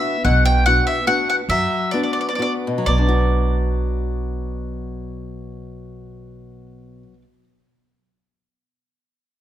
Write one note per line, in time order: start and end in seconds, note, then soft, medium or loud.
0.00 0.16 B3 soft
0.00 0.16 D4 soft
0.00 0.16 F#4 medium
0.00 0.22 E5 medium
0.25 0.78 B1 loud
0.25 0.64 B2 medium
0.25 0.45 F#5 medium
0.45 0.63 G5 loud
0.66 0.99 B3 soft
0.66 0.99 D4 soft
0.66 0.99 F#4 medium
0.66 0.86 F#5 loud
0.87 1.04 E5 medium
1.07 1.40 B3 medium
1.07 1.40 D4 soft
1.07 1.41 F#4 medium
1.07 1.28 F#5 loud
1.30 1.35 F#5 medium
1.49 1.64 F#2 medium
1.49 1.92 F#3 medium
1.49 1.90 E5 medium
1.91 2.30 B3 soft
1.91 2.30 D4 soft
1.91 2.30 F#4 medium
1.91 2.00 D5 medium
2.03 2.11 D5 soft
2.13 2.20 D5 medium
2.21 2.27 D5 soft
2.29 2.34 D5 medium
2.35 2.78 B3 soft
2.35 2.78 D4 soft
2.35 2.41 D5 medium
2.40 2.78 F#4 soft
2.40 2.52 D5 medium
2.67 7.02 B2 medium
2.78 7.13 F#3 medium
2.86 7.22 B1 medium
2.86 7.24 B3 soft
2.86 7.22 D5 medium
2.98 7.33 D4 soft
3.08 7.44 F#4 medium